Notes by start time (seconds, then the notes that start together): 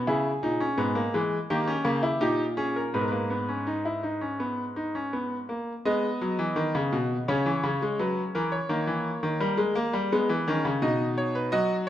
0.07 C#3 E4 G#4
0.43 A#2 D#4
0.60 C#4
0.78 G#2 B3
0.95 A#3
1.14 E3 G#3
1.50 D#3 A#3 G4
1.67 C#4
1.84 C#3 A#3
2.03 E4
2.21 A#2 D#4 G4
2.57 C#4 G#4
2.76 A#4
2.94 G#2 B3 B4
3.01 A#4
3.08 A#3 B4
3.30 B3
3.49 C#4
3.67 D#4
3.85 E4
4.03 D#4
4.21 C#4
4.40 B3
4.76 D#4
4.95 C#4
5.13 B3
5.49 A#3
5.85 G#3 B3 D#5
6.21 F#3
6.39 E3
6.56 D#3
6.75 C#3
6.93 B2
7.28 C#3 C#4 C#5
7.46 E3
7.64 C#3
7.82 G#3
7.99 F#3 B4
8.35 E3 A#4
8.52 C#5
8.69 D#3 A#3
8.87 E3
9.23 D#3
9.40 G3 A#4
9.57 G#3
9.75 A#3
9.93 G3
10.12 G#3 B3
10.29 E3
10.48 D#3 C#4
10.65 C#3
10.82 B2 D#4 D#5
11.18 C#5
11.35 B4
11.52 F#3 F#4 D#5